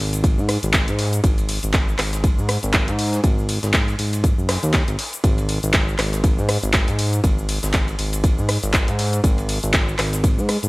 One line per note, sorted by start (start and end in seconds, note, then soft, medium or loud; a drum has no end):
0.00 0.39 G#1 medium
0.13 closed hi-hat medium
0.13 ride soft
0.13 shaker medium
0.24 kick loud
0.24 closed hi-hat medium
0.24 ride medium
0.24 shaker medium
0.38 0.58 G#2 medium
0.38 shaker soft
0.49 cross-stick medium
0.49 open hi-hat loud
0.49 ride medium
0.63 0.89 G#1 loud
0.63 closed hi-hat medium
0.63 shaker medium
0.74 kick loud
0.74 snare loud
0.74 clap loud
0.74 closed hi-hat medium
0.74 ride medium
0.74 shaker medium
0.88 1.20 G#2 loud
0.88 closed hi-hat medium
0.88 shaker soft
0.99 snare soft
0.99 open hi-hat loud
0.99 ride medium
1.13 closed hi-hat medium
1.13 shaker medium
1.24 1.59 G#1 loud
1.24 kick loud
1.24 closed hi-hat medium
1.24 ride medium
1.24 shaker medium
1.38 ride soft
1.38 shaker soft
1.49 open hi-hat loud
1.49 ride medium
1.63 1.95 G#1 medium
1.63 closed hi-hat medium
1.63 shaker medium
1.74 kick loud
1.74 snare loud
1.74 clap loud
1.74 closed hi-hat medium
1.74 ride medium
1.74 shaker medium
1.88 shaker soft
1.99 2.39 G#1 medium
1.99 cross-stick medium
1.99 clap medium
1.99 open hi-hat loud
1.99 ride medium
2.13 snare soft
2.13 closed hi-hat medium
2.13 shaker medium
2.24 kick loud
2.24 closed hi-hat medium
2.24 ride medium
2.24 shaker soft
2.38 2.58 G#2 medium
2.38 shaker soft
2.49 cross-stick medium
2.49 open hi-hat loud
2.49 ride medium
2.63 2.89 G#1 loud
2.63 closed hi-hat medium
2.63 shaker medium
2.74 kick loud
2.74 snare loud
2.74 clap loud
2.74 closed hi-hat medium
2.74 ride medium
2.74 shaker medium
2.88 3.20 G#2 loud
2.88 closed hi-hat medium
2.88 shaker soft
2.99 open hi-hat loud
2.99 ride medium
3.13 snare soft
3.13 closed hi-hat medium
3.13 shaker medium
3.24 3.59 G#1 loud
3.24 kick loud
3.24 closed hi-hat medium
3.24 ride medium
3.24 shaker medium
3.39 shaker soft
3.49 open hi-hat loud
3.49 ride medium
3.63 3.95 G#1 medium
3.63 snare soft
3.63 closed hi-hat medium
3.63 shaker medium
3.74 kick loud
3.74 snare loud
3.74 clap loud
3.74 closed hi-hat medium
3.74 ride medium
3.74 shaker medium
3.88 ride soft
3.88 shaker soft
3.99 4.34 G#1 medium
3.99 open hi-hat loud
3.99 ride medium
4.13 closed hi-hat soft
4.13 ride soft
4.13 shaker medium
4.24 kick loud
4.24 closed hi-hat medium
4.24 ride medium
4.24 shaker medium
4.38 4.58 F#1 medium
4.38 shaker soft
4.49 cross-stick medium
4.49 snare loud
4.49 open hi-hat loud
4.49 ride medium
4.63 4.83 D#2 loud
4.63 closed hi-hat soft
4.63 shaker medium
4.74 kick loud
4.74 snare loud
4.74 clap loud
4.74 closed hi-hat medium
4.74 ride medium
4.74 shaker medium
4.88 4.97 G#1 medium
4.88 closed hi-hat medium
4.88 shaker soft
4.99 snare soft
4.99 open hi-hat loud
4.99 ride medium
5.13 closed hi-hat soft
5.13 shaker medium
5.24 5.59 G#1 loud
5.24 kick loud
5.24 closed hi-hat medium
5.24 ride medium
5.24 shaker medium
5.38 ride soft
5.38 shaker soft
5.49 open hi-hat loud
5.49 ride medium
5.63 5.95 G#1 medium
5.63 closed hi-hat soft
5.63 shaker medium
5.74 kick loud
5.74 snare loud
5.74 clap loud
5.74 closed hi-hat medium
5.74 ride medium
5.74 shaker medium
5.88 shaker soft
5.99 6.39 G#1 medium
5.99 cross-stick medium
5.99 clap medium
5.99 open hi-hat loud
5.99 ride medium
6.13 snare soft
6.13 closed hi-hat medium
6.13 shaker medium
6.24 kick loud
6.24 closed hi-hat medium
6.24 ride medium
6.24 shaker medium
6.38 6.58 G#2 loud
6.38 shaker soft
6.49 cross-stick medium
6.49 open hi-hat loud
6.49 ride medium
6.63 6.89 G#1 loud
6.63 closed hi-hat soft
6.63 shaker medium
6.74 kick loud
6.74 snare loud
6.74 clap loud
6.74 closed hi-hat medium
6.74 ride medium
6.74 shaker medium
6.88 7.20 G#2 loud
6.88 closed hi-hat medium
6.88 ride soft
6.88 shaker soft
6.99 open hi-hat loud
6.99 ride medium
7.13 closed hi-hat soft
7.13 shaker medium
7.24 7.59 G#1 loud
7.24 kick loud
7.24 closed hi-hat medium
7.24 ride medium
7.24 shaker medium
7.38 shaker soft
7.49 open hi-hat loud
7.49 ride medium
7.63 7.95 G#1 medium
7.63 snare soft
7.63 closed hi-hat medium
7.63 shaker medium
7.74 kick loud
7.74 snare loud
7.74 clap loud
7.74 closed hi-hat medium
7.74 ride medium
7.74 shaker medium
7.88 ride soft
7.88 shaker soft
7.99 8.39 G#1 medium
7.99 open hi-hat loud
7.99 ride medium
8.13 closed hi-hat medium
8.13 ride soft
8.13 shaker medium
8.24 kick loud
8.24 closed hi-hat medium
8.24 ride medium
8.24 shaker medium
8.38 8.58 G#2 medium
8.38 shaker soft
8.49 cross-stick medium
8.49 open hi-hat loud
8.49 ride medium
8.63 8.89 G#1 loud
8.63 closed hi-hat soft
8.63 shaker medium
8.74 kick loud
8.74 snare loud
8.74 clap loud
8.74 closed hi-hat medium
8.74 ride medium
8.74 shaker medium
8.88 9.20 G#2 loud
8.88 closed hi-hat medium
8.88 shaker soft
8.99 snare soft
8.99 open hi-hat loud
8.99 ride medium
9.13 closed hi-hat medium
9.13 shaker medium
9.24 9.59 G#1 loud
9.24 kick loud
9.24 closed hi-hat medium
9.24 ride medium
9.24 shaker medium
9.38 ride soft
9.38 shaker soft
9.49 open hi-hat loud
9.49 ride medium
9.63 9.95 G#1 medium
9.63 closed hi-hat medium
9.63 shaker medium
9.74 kick loud
9.74 snare loud
9.74 clap loud
9.74 closed hi-hat medium
9.74 ride medium
9.74 shaker medium
9.89 shaker soft
9.99 10.39 G#1 medium
9.99 cross-stick medium
9.99 clap medium
9.99 open hi-hat loud
9.99 ride medium
10.13 snare soft
10.13 closed hi-hat medium
10.13 shaker medium
10.24 kick loud
10.24 closed hi-hat medium
10.24 ride medium
10.24 shaker medium
10.38 10.58 G#2 loud
10.38 shaker soft
10.49 cross-stick medium
10.49 open hi-hat loud
10.49 ride medium
10.63 10.69 G#1 loud
10.63 closed hi-hat medium
10.63 shaker medium